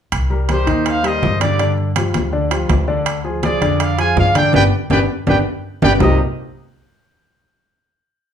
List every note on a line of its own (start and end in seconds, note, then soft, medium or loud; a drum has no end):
0.12 0.63 C2 loud
0.12 high conga soft
0.12 high timbale medium
0.30 0.45 G3 medium
0.30 0.45 G4 medium
0.30 0.46 A#4 medium
0.30 high conga soft
0.48 0.64 G3 medium
0.48 0.64 G4 medium
0.48 0.84 G4 medium
0.48 0.64 A#4 medium
0.48 0.84 C5 medium
0.48 high conga medium
0.48 high timbale medium
0.48 low timbale medium
0.66 1.19 D#2 medium
0.66 0.97 D#3 medium
0.66 0.97 D#4 medium
0.66 0.97 D#5 medium
0.66 high conga soft
0.66 high timbale medium
0.86 1.05 C5 medium
0.86 1.05 F5 medium
0.86 high conga soft
0.86 high timbale medium
1.03 1.34 G3 medium
1.03 1.34 G4 medium
1.03 1.34 A#4 medium
1.03 1.42 C5 medium
1.03 1.42 D#5 loud
1.03 high conga soft
1.03 high timbale medium
1.23 2.09 G2 medium
1.23 high conga medium
1.23 low timbale medium
1.41 1.56 D3 medium
1.41 1.56 D4 medium
1.41 1.76 G4 medium
1.41 1.56 D5 medium
1.41 1.76 D5 medium
1.41 high conga medium
1.41 high timbale medium
1.59 1.90 D3 medium
1.59 1.89 D4 medium
1.59 1.90 D5 medium
1.59 high conga soft
1.59 high timbale medium
1.78 high conga soft
1.96 2.26 F3 medium
1.96 2.26 F4 medium
1.96 2.27 G4 medium
1.96 high conga medium
1.96 high timbale medium
1.96 low timbale medium
2.14 2.66 D2 medium
2.14 high conga medium
2.14 high timbale medium
2.33 2.48 D3 medium
2.33 2.48 D4 medium
2.33 2.48 D5 medium
2.33 high conga soft
2.51 2.81 F3 medium
2.51 2.81 F4 medium
2.51 2.82 G4 medium
2.51 high conga soft
2.51 high timbale medium
2.69 3.56 D2 loud
2.69 high conga medium
2.69 high timbale medium
2.69 low timbale medium
2.88 3.18 D3 medium
2.88 3.18 D4 medium
2.88 3.18 D5 medium
2.88 high conga soft
3.06 high conga soft
3.06 high timbale medium
3.24 3.40 F3 medium
3.24 3.40 F4 medium
3.24 3.40 G#4 medium
3.24 high conga soft
3.43 3.58 F3 medium
3.43 3.58 F4 medium
3.43 3.59 G#4 medium
3.43 3.78 G#4 medium
3.43 3.78 D5 medium
3.43 high conga medium
3.43 high timbale medium
3.43 low timbale medium
3.62 4.13 F2 medium
3.62 3.92 D3 medium
3.62 3.92 D4 medium
3.62 3.92 D5 medium
3.62 high conga soft
3.62 high timbale medium
3.80 3.99 D5 medium
3.80 3.99 F5 medium
3.80 high conga soft
3.80 high timbale medium
3.98 4.28 F3 medium
3.98 4.29 F4 medium
3.98 4.29 G#4 medium
3.98 4.16 F5 medium
3.98 4.16 G#5 medium
3.98 high conga soft
3.98 high timbale medium
4.17 4.51 G2 medium
4.17 4.35 D5 medium
4.17 4.34 F5 medium
4.17 high conga medium
4.17 low timbale medium
4.35 4.50 D3 medium
4.35 4.50 D4 medium
4.35 4.50 D5 medium
4.35 4.53 D5 medium
4.35 4.53 G5 medium
4.35 high conga medium
4.35 high timbale medium
4.53 4.67 G1 loud
4.53 4.65 B3 medium
4.53 4.65 D4 medium
4.53 4.65 G4 medium
4.53 4.63 B4 loud
4.53 4.63 D5 medium
4.53 4.63 G5 loud
4.53 high conga medium
4.53 high timbale medium
4.90 5.04 G1 medium
4.90 5.02 B3 medium
4.90 5.02 D4 medium
4.90 5.02 G4 medium
4.90 5.00 B4 medium
4.90 5.00 D5 medium
4.90 5.00 G5 medium
4.90 high conga medium
4.90 high timbale medium
5.27 5.41 G1 medium
5.27 5.39 B3 medium
5.27 5.39 D4 loud
5.27 5.39 G4 medium
5.27 5.36 B4 medium
5.27 5.36 D5 medium
5.27 5.36 G5 medium
5.27 high conga medium
5.27 high timbale medium
5.82 5.96 G1 medium
5.82 5.94 B3 medium
5.82 5.94 D4 medium
5.82 5.94 G4 medium
5.82 5.92 B4 medium
5.82 5.91 D5 loud
5.82 5.92 G5 loud
5.82 high conga medium
5.82 high timbale loud
6.00 6.17 C2 loud
6.00 6.17 C3 medium
6.00 6.17 G3 medium
6.00 6.17 A#3 medium
6.00 6.17 C4 medium
6.00 6.18 D#4 medium
6.00 6.18 G4 loud
6.00 6.18 D#5 medium
6.00 low conga medium
6.00 low timbale medium